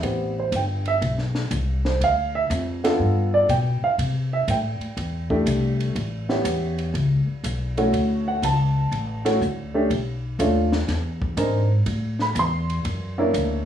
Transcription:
0.02 upright bass A1, grand piano B3 C4 E4 G4, kick, ride
0.39 grand piano C5
0.52 upright bass G1, grand piano G5, kick, hi-hat pedal, ride
0.85 grand piano E5, ride
1.02 upright bass B1, kick, ride
1.18 snare
1.35 snare
1.51 upright bass C2, kick, hi-hat pedal, ride
1.85 grand piano C5, snare
2.00 upright bass D2, grand piano F5, kick, ride
2.35 grand piano E5
2.50 upright bass F2, kick, hi-hat pedal, ride
2.84 grand piano B3 D4 F4 A4, snare, ride
2.99 upright bass G2, kick
3.34 grand piano D5
3.49 upright bass B2, grand piano G5, kick, hi-hat pedal, ride
3.82 grand piano F5, muted upright bass stroke
3.98 upright bass C3, kick, ride
4.33 grand piano E5
4.47 upright bass A2, grand piano G5, kick, hi-hat pedal, ride
4.80 muted upright bass stroke, ride
4.97 upright bass E2, kick, ride
5.30 grand piano A3 D4 E4 G4, kick
5.46 upright bass C2, kick, hi-hat pedal, ride
5.80 ride
5.95 upright bass A1, kick, ride
6.29 grand piano B3 C#4 E4 G4, snare
6.44 upright bass E2, kick, hi-hat pedal, ride
6.78 ride
6.94 upright bass C#2, kick, ride
7.27 muted upright bass stroke
7.44 upright bass B1, kick, hi-hat pedal, ride
7.77 grand piano A3 C#4 E4 F#4, ride
7.92 upright bass D2, kick, ride
8.28 grand piano F#5
8.42 upright bass C#2, grand piano A5, kick, hi-hat pedal, ride
8.91 upright bass A1, kick, ride
9.25 grand piano A3 C#4 E4 F#4, snare, ride
9.41 upright bass D2, kick, hi-hat pedal
9.74 grand piano A3 C#4 D4 G4
9.90 upright bass B1, kick, ride
10.39 upright bass D#2, grand piano A3 C#4 D4 F4, kick, hi-hat pedal, ride
10.72 snare
10.88 upright bass E2, kick, snare, ride
11.22 kick
11.37 upright bass G#2, grand piano G#3 C4 D4 A#4, kick, hi-hat pedal, ride
11.86 upright bass A2, kick, ride
12.19 grand piano B5, snare
12.35 upright bass E2, kick, hi-hat pedal, ride
12.39 grand piano C6
12.70 ride
12.85 upright bass F#2, kick, ride
13.18 grand piano A#3 C#4 D4 E4
13.34 upright bass D2, kick, hi-hat pedal, ride

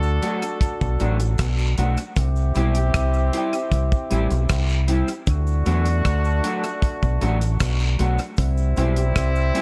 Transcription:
Already playing: fingered electric bass D2, horn section D4 F#4 A4
0.03 cabasa
0.22 clean electric guitar F#3 A3 D4 F#4, closed hi-hat, cabasa
0.42 closed hi-hat, cabasa
0.61 kick, closed hi-hat, cabasa
0.81 fingered electric bass B1, kick, cabasa
0.99 fingered electric bass A1, clean electric guitar F#3 A3 D4 F#4, closed hi-hat, cabasa
1.20 muted clean electric guitar stroke, closed hi-hat, cabasa
1.38 fingered electric bass B1, kick, cross-stick, closed hi-hat, cabasa, long guiro
1.59 cabasa
1.77 fingered electric bass B1, clean electric guitar F#3 A3 D4 F#4, closed hi-hat, cabasa
1.97 closed hi-hat, cabasa
2.16 fingered electric bass C2, horn section C4 E4 G4, kick, closed hi-hat, cabasa
2.36 cabasa
2.55 fingered electric bass B1, clean electric guitar G3 C4 E4 G4, closed hi-hat, cabasa
2.75 closed hi-hat, cabasa
2.94 fingered electric bass C2, kick, cross-stick, closed hi-hat, cabasa
3.14 cabasa
3.33 clean electric guitar G3 C4 E4 G4, closed hi-hat, cabasa
3.53 closed hi-hat, cabasa
3.72 fingered electric bass C2, kick, closed hi-hat, cabasa
3.92 kick, cabasa
4.10 fingered electric bass A1, clean electric guitar G3 C4 E4 G4, closed hi-hat, cabasa
4.30 fingered electric bass B1, muted clean electric guitar stroke, closed hi-hat, cabasa
4.49 fingered electric bass C2, kick, cross-stick, closed hi-hat, cabasa, long guiro
4.69 cabasa
4.88 clean electric guitar G3 C4 E4 G4, closed hi-hat, cabasa
5.08 closed hi-hat, cabasa
5.27 fingered electric bass D2, horn section A3 D4 F#4, kick, closed hi-hat, cabasa
5.47 cabasa
5.66 fingered electric bass E2, clean electric guitar F#3 A3 D4 F#4, closed hi-hat, cabasa
5.86 closed hi-hat, cabasa
6.05 fingered electric bass D2, kick, cross-stick, closed hi-hat, cabasa
6.25 cabasa
6.43 clean electric guitar F#3 A3 D4 F#4, closed hi-hat, cabasa
6.64 closed hi-hat, cabasa
6.82 kick, closed hi-hat, cabasa
7.02 fingered electric bass B1, kick, cabasa
7.21 fingered electric bass A1, clean electric guitar F#3 A3 D4 F#4, closed hi-hat, cabasa
7.41 muted clean electric guitar stroke, closed hi-hat, cabasa
7.60 fingered electric bass B1, kick, cross-stick, closed hi-hat, cabasa, long guiro
7.80 cabasa
7.99 fingered electric bass B1, clean electric guitar F#3 A3 D4 F#4, closed hi-hat, cabasa
8.18 closed hi-hat, cabasa
8.37 fingered electric bass C2, horn section G3 C4 E4, kick, closed hi-hat, cabasa
8.57 cabasa
8.76 fingered electric bass B1, clean electric guitar G3 C4 E4 G4, closed hi-hat, cabasa
8.96 closed hi-hat, cabasa
9.16 fingered electric bass C2, kick, cross-stick, closed hi-hat, cabasa
9.36 cabasa
9.54 clean electric guitar G3 C4 E4 G4, closed hi-hat, cabasa

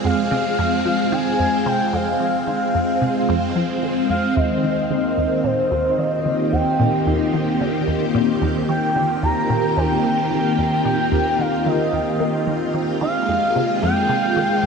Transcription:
Already playing: string machine G#3 C4 F4
0.04 synth arpeggio sound F2, analog synth lead F5
0.31 synth arpeggio sound C3
0.58 synth arpeggio sound F2
0.85 synth arpeggio sound F3
1.12 synth arpeggio sound D#3, analog synth lead G#5
1.39 synth arpeggio sound F2
1.66 synth arpeggio sound C3, analog synth lead G5
1.93 synth arpeggio sound F2, analog synth lead F5
2.20 synth arpeggio sound F3
2.47 synth arpeggio sound D#3
2.74 synth arpeggio sound F2
3.01 synth arpeggio sound C3
3.29 synth arpeggio sound F2
3.55 synth arpeggio sound F3
3.82 synth arpeggio sound D#3
4.10 synth arpeggio sound F2, analog synth lead F5
4.36 synth arpeggio sound D#2, string machine D#3, analog synth lead D#5
4.63 synth arpeggio sound D#3
4.75 string machine A#3
4.90 synth arpeggio sound D3
5.17 synth arpeggio sound D#2
5.44 synth arpeggio sound A#2, analog synth lead C5
5.71 synth arpeggio sound D#2
5.94 synth arpeggio sound D#3, string machine F4 G4
5.99 analog synth lead D#5
6.25 synth arpeggio sound D3
6.52 synth arpeggio sound D#2, analog synth lead G5
6.79 synth arpeggio sound A#2
7.07 synth arpeggio sound D#2
7.34 synth arpeggio sound D#3
7.61 synth arpeggio sound D3
7.88 synth arpeggio sound D#2
8.14 synth arpeggio sound A#2
8.41 synth arpeggio sound D#2
8.69 synth arpeggio sound D#3, analog synth lead G5
8.96 synth arpeggio sound D3
9.23 synth arpeggio sound D#2, analog synth lead A#5
9.50 synth arpeggio sound A#2
9.77 synth arpeggio sound D#2, analog synth lead G5
10.04 synth arpeggio sound D#3
10.31 synth arpeggio sound D3
10.58 synth arpeggio sound D#2
10.85 synth arpeggio sound A#2, analog synth lead G5
11.12 synth arpeggio sound D#2
11.39 synth arpeggio sound D#3, analog synth lead F5
11.66 synth arpeggio sound D3, analog synth lead D#5
11.93 synth arpeggio sound D#2
12.20 synth arpeggio sound A#3
12.47 synth arpeggio sound D#3
12.74 synth arpeggio sound D#3
13.01 synth arpeggio sound D#3, string machine G#3, analog synth lead F5
13.28 synth arpeggio sound F2
13.55 synth arpeggio sound C3, string machine C4
13.82 synth arpeggio sound F2, analog synth lead G5
14.09 synth arpeggio sound C3
14.36 synth arpeggio sound D#3
14.63 synth arpeggio sound F2

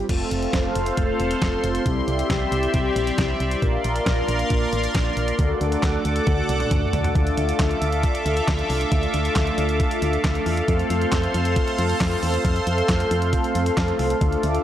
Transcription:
0.09 fm bass F1, analog polysynth A3 C4 F4 A4, analog synth pad A4 C5 F5 C6, kick, closed hi-hat, crash
0.31 fm bass F1, closed hi-hat
0.43 closed hi-hat
0.53 fm bass F1, kick, snare, closed hi-hat
0.75 fm bass F1, closed hi-hat
0.86 closed hi-hat
0.97 fm bass F1, kick, closed hi-hat
1.20 fm bass E1, closed hi-hat
1.31 closed hi-hat
1.42 fm bass F1, kick, snare, closed hi-hat
1.64 fm bass F1, closed hi-hat
1.75 closed hi-hat
1.86 fm bass C2, analog polysynth G3 C4 E4 G4, analog synth pad G4 D5 E5, kick, closed hi-hat
2.08 fm bass C2, closed hi-hat
2.19 closed hi-hat
2.30 fm bass C2, kick, snare, closed hi-hat
2.52 fm bass C2, closed hi-hat
2.63 closed hi-hat
2.74 fm bass C2, kick, closed hi-hat
2.96 fm bass A#1, closed hi-hat
3.07 closed hi-hat
3.18 fm bass C2, kick, snare, closed hi-hat
3.40 fm bass C2, closed hi-hat
3.51 closed hi-hat
3.62 fm bass A#1, analog polysynth A#3 D4 F4 A#4, analog synth pad A#4 F5 C6, kick, closed hi-hat
3.84 fm bass A#1, closed hi-hat
3.96 closed hi-hat
4.06 fm bass A#1, kick, snare, closed hi-hat
4.28 fm bass A#1, closed hi-hat
4.39 closed hi-hat
4.50 fm bass A#1, kick, closed hi-hat
4.73 fm bass A1, closed hi-hat
4.84 closed hi-hat
4.95 fm bass A#1, kick, snare, closed hi-hat
5.17 fm bass A#1, closed hi-hat
5.28 closed hi-hat
5.39 fm bass D2, analog polysynth A3 D4 F#4 A4, analog synth pad A4 F#5 D6, kick, closed hi-hat
5.61 fm bass D2, closed hi-hat
5.72 closed hi-hat
5.83 fm bass D2, kick, snare, clap, closed hi-hat
6.05 fm bass D2, closed hi-hat
6.16 closed hi-hat
6.27 fm bass D2, kick, closed hi-hat, high tom
6.49 fm bass C2, closed hi-hat
6.60 closed hi-hat, mid tom
6.71 fm bass D2, kick, closed hi-hat, mid tom
6.93 fm bass D2, closed hi-hat, floor tom
7.04 closed hi-hat, floor tom
7.15 fm bass D2, analog polysynth A3 D4 F4 A4, analog synth pad A4 E5 F5 D6, kick, closed hi-hat
7.27 closed hi-hat
7.37 fm bass D2, closed hi-hat
7.49 closed hi-hat
7.59 fm bass D2, kick, snare, clap, closed hi-hat
7.71 closed hi-hat
7.82 fm bass D2, closed hi-hat
7.92 closed hi-hat
8.03 kick, closed hi-hat
8.15 closed hi-hat
8.26 fm bass D2, closed hi-hat
8.37 closed hi-hat
8.48 fm bass D2, kick, snare, clap, closed hi-hat
8.59 closed hi-hat
8.70 fm bass C2, open hi-hat
8.81 closed hi-hat
8.92 fm bass D2, kick, closed hi-hat
9.03 closed hi-hat
9.14 fm bass D2, closed hi-hat
9.25 closed hi-hat
9.36 fm bass D2, kick, snare, clap, closed hi-hat
9.47 closed hi-hat
9.58 fm bass D2, closed hi-hat
9.69 closed hi-hat
9.80 kick, closed hi-hat
9.91 closed hi-hat
10.02 fm bass D2, closed hi-hat
10.13 closed hi-hat
10.24 fm bass D2, kick, snare, clap, closed hi-hat
10.35 closed hi-hat
10.46 fm bass E2, open hi-hat
10.57 closed hi-hat
10.68 fm bass F2, analog polysynth A3 C4 F4 A4, analog synth pad C5 C6, kick, closed hi-hat
10.79 closed hi-hat
10.90 fm bass F2, closed hi-hat
11.02 closed hi-hat
11.12 fm bass F2, kick, snare, clap, closed hi-hat
11.24 closed hi-hat
11.34 fm bass F2, closed hi-hat
11.45 closed hi-hat
11.56 kick, closed hi-hat
11.68 closed hi-hat
11.78 fm bass F2, closed hi-hat
11.90 closed hi-hat
12.00 fm bass F2, kick, snare, clap, closed hi-hat
12.12 closed hi-hat
12.23 fm bass E2, open hi-hat
12.34 closed hi-hat
12.45 fm bass F2, kick, closed hi-hat
12.56 closed hi-hat
12.67 fm bass F2, closed hi-hat
12.78 closed hi-hat
12.89 fm bass F2, kick, snare, clap, closed hi-hat
13.00 closed hi-hat
13.11 fm bass F2, closed hi-hat
13.22 closed hi-hat
13.33 kick, closed hi-hat
13.44 closed hi-hat
13.55 fm bass F2, closed hi-hat
13.66 closed hi-hat
13.77 fm bass F2, kick, snare, clap, closed hi-hat
13.88 closed hi-hat
13.99 fm bass C2, open hi-hat
14.10 closed hi-hat
14.21 fm bass D2, analog polysynth A3 D4 F4 A4, analog synth pad E5 D6, kick, closed hi-hat
14.32 closed hi-hat
14.43 fm bass D2, closed hi-hat
14.55 closed hi-hat

